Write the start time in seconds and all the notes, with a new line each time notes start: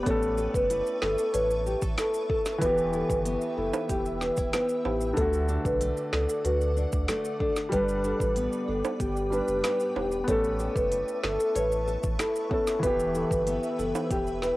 Already playing: B3 D4 G4 B4
0.03 A1 A3 B3 C#4 A4 E5 A5 C#6, kick, closed hi-hat, maracas
0.10 A4
0.23 maracas
0.38 A4, maracas
0.54 F#1 B4, kick, maracas
0.70 E4, closed hi-hat, maracas
0.86 maracas
1.02 G1 A4, finger snap, snare
1.18 A4, maracas
1.34 A1 B4 C#5, closed hi-hat, maracas
1.50 maracas
1.66 G4, maracas
1.82 A1 A4, kick, maracas
1.98 E4 A4, finger snap, snare, closed hi-hat, maracas
2.14 maracas
2.30 A4, kick
2.45 snare, maracas
2.58 E1 E3 B3 B4 E5 G5 E6, kick, closed hi-hat, maracas
2.66 G4
2.78 maracas
2.93 E4 A4, maracas
3.10 G1 B4, kick, maracas
3.25 B3, closed hi-hat, maracas
3.41 maracas
3.57 F#1 E4 A4
3.73 high timbale, maracas
3.89 E1 G4, kick, closed hi-hat, maracas
4.06 maracas
4.21 D4 B4, snare, maracas
4.37 E1 E4, kick, maracas
4.53 B3 B4, finger snap, snare, closed hi-hat, high timbale, maracas
4.69 maracas
4.85 A1 E4 G4, high timbale
5.01 maracas
5.13 D2 D3 A3 A4 D5 F#5 D6, kick, closed hi-hat, maracas
5.17 D3 F#4
5.33 maracas
5.48 D4, maracas
5.65 B1 B4, kick, maracas
5.81 A3, closed hi-hat, maracas
5.97 maracas
6.13 C#2 D4 A4, finger snap, snare
6.29 A4, maracas
6.45 D2 F#4 B4, closed hi-hat, maracas
6.61 maracas
6.77 D4, maracas
6.92 D2, kick, maracas
7.08 A3 A4, finger snap, snare, closed hi-hat, maracas
7.25 maracas
7.40 D4 A4, kick
7.56 snare, maracas
7.69 G1 G3 D4 B4 G5, kick, closed hi-hat, maracas
7.76 B4
7.89 maracas
8.04 D4 A4, maracas
8.20 A1 B4, kick, maracas
8.36 B3, closed hi-hat, maracas
8.53 maracas
8.68 G1 D4 A4
8.85 high timbale, maracas
9.00 G1 G4, kick, closed hi-hat, maracas
9.17 maracas
9.30 G3 D4 B4, maracas
9.48 F#1, maracas
9.64 B3 B4, finger snap, snare, closed hi-hat, high timbale, maracas
9.80 maracas
9.96 E1 D4 G4, high timbale
10.12 maracas
10.24 A1 B3 C#4 A4 E5 A5 C#6, kick, closed hi-hat, maracas
10.28 A3 A4
10.44 maracas
10.59 A4, maracas
10.76 F#1 B4, kick, maracas
10.91 E4, closed hi-hat, maracas
11.08 maracas
11.23 G1 A4, finger snap, snare
11.39 A4, maracas
11.55 A1 B4 C#5, closed hi-hat, maracas
11.72 maracas
11.88 A4, maracas
12.03 A1, kick, maracas
12.19 E4 A4, finger snap, snare, closed hi-hat, maracas
12.36 maracas
12.49 B3 C#4 A4, kick
12.67 snare, maracas
12.79 E1 E3 B3 B4 E5 G5 E6, kick, closed hi-hat
12.83 G4, maracas
12.99 maracas
13.15 E4 A4, maracas
13.31 G1 B4, kick, maracas
13.47 B3, closed hi-hat, maracas
13.63 maracas
13.79 F#1 E4 A4, maracas
13.95 high timbale, maracas
14.11 E1 G4, kick, closed hi-hat, maracas
14.27 maracas
14.42 E4 B4, snare, maracas